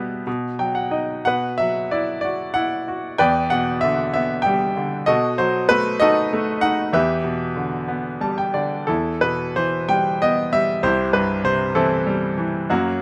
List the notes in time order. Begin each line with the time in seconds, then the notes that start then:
Already playing: B2 G3 B3 G4 B4 E5
0.27 B2
0.59 F#3 G5
0.75 F#5
0.91 D#4 D#5
1.25 B2 B4 F#5
1.58 F#3 E5
1.91 E4 D5
2.21 F#4 D5
2.54 E4 F#5
2.88 F#4
3.18 E2 B4 D5 G5
3.50 B2 F#5
3.81 D3 E5
4.14 B3 E5
4.42 G5
4.46 G3
4.77 D3
5.06 B2 F#4 A4 D#5
5.38 F#3 C5
5.69 A3 B4
6.00 D#4 F#4 A4 D#5
6.33 A3
6.61 D#4 F#5
6.93 E2 G4 B4 E5
7.24 B2
7.56 D3
7.88 B3
8.21 G3 A5
8.38 G5
8.54 D3 D5
8.87 E2 E4 A4
9.21 B2 B4
9.56 E3 C5
9.89 G3 G5
10.22 B3 D#5
10.53 G3 E5
10.83 C2 E4 G4 C5
11.13 G2 B4
11.44 C3 C5
11.75 E3 C4 E4 A4
12.07 G3
12.38 E3
12.70 F#2 A#3 C#4 F#4